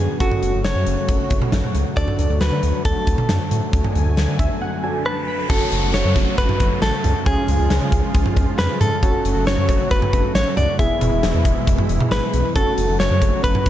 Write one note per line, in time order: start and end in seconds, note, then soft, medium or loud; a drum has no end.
0.00 0.19 D3 medium
0.00 5.46 F#3 medium
0.00 0.19 B3 medium
0.00 0.20 D4 soft
0.00 0.19 F#4 medium
0.00 0.19 F#4 soft
0.00 0.20 G#4 medium
0.00 0.20 B4 medium
0.20 0.30 F#1 loud
0.20 1.95 C#3 medium
0.20 1.95 A3 medium
0.20 1.93 C#4 medium
0.20 0.61 F#4 medium
0.20 3.70 F#4 medium
0.20 1.93 F#4 medium
0.20 1.93 A4 medium
0.20 kick loud
0.20 closed hi-hat medium
0.31 mid tom loud
0.42 0.52 F#1 loud
0.42 closed hi-hat medium
0.53 0.63 F#1 medium
0.64 0.74 F#1 loud
0.64 1.71 C#5 medium
0.64 snare medium
0.64 closed hi-hat medium
0.75 0.85 F#2 medium
0.86 0.96 F#1 loud
0.86 closed hi-hat medium
1.08 1.18 F#1 loud
1.08 kick loud
1.08 closed hi-hat medium
1.30 1.40 F#1 loud
1.30 kick loud
1.30 closed hi-hat medium
1.42 mid tom medium
1.52 1.62 A1 loud
1.52 snare loud
1.52 closed hi-hat medium
1.52 mid tom medium
1.64 mid tom medium
1.75 1.84 C#2 medium
1.75 closed hi-hat medium
1.97 2.06 D2 loud
1.97 5.46 D3 medium
1.97 5.46 A3 medium
1.97 4.80 D4 medium
1.97 4.80 F#4 medium
1.97 4.80 A4 medium
1.97 2.41 D5 loud
1.97 kick loud
1.97 closed hi-hat medium
2.08 mid tom loud
2.19 2.28 D2 loud
2.19 closed hi-hat medium
2.30 2.39 D2 loud
2.41 2.50 D2 loud
2.41 2.82 B4 medium
2.41 snare loud
2.41 closed hi-hat medium
2.52 2.61 D3 loud
2.63 2.73 D2 loud
2.63 closed hi-hat medium
2.85 2.95 D2 loud
2.85 5.02 A4 medium
2.85 kick loud
2.85 closed hi-hat medium
3.07 3.17 D2 medium
3.07 kick loud
3.07 closed hi-hat medium
3.18 mid tom medium
3.29 3.39 F#2 medium
3.29 snare loud
3.29 closed hi-hat medium
3.29 mid tom medium
3.51 3.61 A2 medium
3.51 closed hi-hat medium
3.73 3.83 D2 loud
3.73 5.48 G#5 medium
3.73 kick loud
3.73 closed hi-hat medium
3.73 riser medium
3.84 mid tom loud
3.95 4.05 D2 loud
3.95 closed hi-hat medium
4.06 4.16 D2 loud
4.17 4.27 D2 loud
4.17 snare loud
4.17 closed hi-hat medium
4.28 4.38 D3 loud
4.39 4.49 D2 loud
4.39 4.60 E5 medium
4.39 kick medium
4.39 closed hi-hat medium
4.62 4.82 F#5 medium
4.84 5.50 D4 medium
4.84 5.49 F#4 medium
4.84 5.49 A4 medium
4.84 5.04 G#5 medium
5.06 5.49 B4 medium
5.06 5.26 A5 medium
5.28 5.48 B5 medium
5.50 5.59 F#1 loud
5.50 8.99 C#3 medium
5.50 7.25 F#3 medium
5.50 7.25 A3 medium
5.50 7.23 C#4 medium
5.50 7.25 F#4 medium
5.50 7.23 F#4 medium
5.50 5.94 A4 loud
5.50 7.23 A4 medium
5.50 kick loud
5.50 crash loud
5.50 downlifter medium
5.72 5.81 F#1 loud
5.72 closed hi-hat medium
5.83 5.92 F#1 loud
5.94 6.03 F#1 loud
5.94 6.35 C#5 loud
5.94 snare loud
5.94 closed hi-hat medium
6.05 6.14 F#2 loud
6.16 6.25 F#1 loud
6.16 kick loud
6.16 closed hi-hat medium
6.38 6.48 F#1 loud
6.38 6.82 B4 loud
6.38 kick loud
6.38 closed hi-hat medium
6.49 mid tom loud
6.60 6.70 F#1 loud
6.60 kick loud
6.60 closed hi-hat medium
6.82 6.92 A1 medium
6.82 7.23 A4 loud
6.82 snare loud
6.82 closed hi-hat medium
7.04 7.14 C#2 loud
7.04 closed hi-hat medium
7.04 mid tom medium
7.26 7.36 C#2 loud
7.26 9.01 F3 medium
7.26 9.01 G#3 medium
7.26 8.99 C#4 medium
7.26 9.01 F4 medium
7.26 8.99 F4 medium
7.26 8.99 G#4 medium
7.26 8.55 G#4 loud
7.26 kick loud
7.26 closed hi-hat medium
7.48 7.58 C#2 loud
7.48 closed hi-hat medium
7.59 7.69 C#2 loud
7.70 7.80 C#2 loud
7.70 snare loud
7.70 closed hi-hat medium
7.81 7.91 C#3 loud
7.92 8.02 C#2 loud
7.92 kick loud
7.92 closed hi-hat medium
8.14 8.24 C#2 loud
8.14 kick loud
8.14 closed hi-hat medium
8.26 mid tom loud
8.36 8.46 C#2 loud
8.36 kick loud
8.36 closed hi-hat medium
8.36 cowbell medium
8.58 8.68 F2 loud
8.58 8.79 B4 loud
8.58 snare loud
8.58 closed hi-hat medium
8.81 8.90 G#2 loud
8.81 9.47 A4 loud
8.81 closed hi-hat medium
8.81 mid tom medium
9.03 9.12 F#1 loud
9.03 10.77 C#3 medium
9.03 10.78 F#3 medium
9.03 10.78 A3 medium
9.03 10.76 C#4 medium
9.03 10.77 F#4 medium
9.03 10.76 F#4 medium
9.03 10.76 A4 medium
9.03 kick loud
9.03 closed hi-hat medium
9.25 9.34 F#1 loud
9.25 closed hi-hat medium
9.36 9.45 F#1 medium
9.47 9.56 F#1 loud
9.47 9.88 C#5 loud
9.47 snare loud
9.47 closed hi-hat medium
9.58 9.67 F#2 loud
9.69 9.78 F#1 loud
9.69 kick loud
9.69 closed hi-hat medium
9.69 cowbell medium
9.91 10.01 F#1 loud
9.91 10.32 B4 loud
9.91 kick loud
9.91 closed hi-hat medium
10.02 mid tom medium
10.13 10.23 F#1 loud
10.13 kick loud
10.13 closed hi-hat medium
10.35 10.44 A1 loud
10.35 10.56 C#5 loud
10.35 snare loud
10.35 closed hi-hat medium
10.57 10.67 C#2 loud
10.57 10.78 D5 loud
10.57 closed hi-hat medium
10.57 mid tom medium
10.79 10.89 E1 loud
10.79 12.54 B2 medium
10.79 12.54 E3 medium
10.79 12.54 G#3 medium
10.79 12.09 B3 medium
10.79 12.09 E4 medium
10.79 12.54 E4 medium
10.79 12.09 G#4 medium
10.79 12.08 E5 loud
10.79 kick loud
10.79 closed hi-hat medium
11.01 11.11 E1 loud
11.01 closed hi-hat medium
11.01 mid tom medium
11.12 11.22 E1 loud
11.23 11.33 E1 loud
11.23 snare loud
11.23 closed hi-hat medium
11.34 11.44 E2 loud
11.45 11.55 E1 loud
11.45 kick loud
11.45 closed hi-hat medium
11.67 11.77 E1 loud
11.67 kick loud
11.67 closed hi-hat medium
11.78 mid tom loud
11.89 11.99 E1 loud
11.89 closed hi-hat medium
12.00 mid tom loud
12.11 12.21 G#1 loud
12.11 12.56 B3 medium
12.11 12.56 E4 soft
12.11 12.56 G#4 medium
12.11 12.55 B4 loud
12.11 snare loud
12.11 closed hi-hat medium
12.34 12.43 B1 loud
12.34 closed hi-hat medium
12.56 12.65 F#1 loud
12.56 13.70 C#3 medium
12.56 13.70 F#3 medium
12.56 13.70 A3 medium
12.56 13.70 C#4 medium
12.56 13.70 F#4 medium
12.56 13.70 A4 medium
12.56 12.97 A4 loud
12.56 kick loud
12.56 closed hi-hat medium
12.78 12.87 F#1 loud
12.78 closed hi-hat medium
12.89 12.98 F#1 loud
13.00 13.09 F#1 loud
13.00 13.43 C#5 loud
13.00 snare loud
13.00 closed hi-hat medium
13.11 13.20 F#2 loud
13.22 13.31 F#1 medium
13.22 kick loud
13.22 closed hi-hat medium
13.44 13.53 F#1 loud
13.44 13.70 B4 loud
13.44 kick loud
13.44 closed hi-hat medium
13.55 mid tom loud
13.66 13.70 F#1 loud
13.66 kick loud
13.66 closed hi-hat medium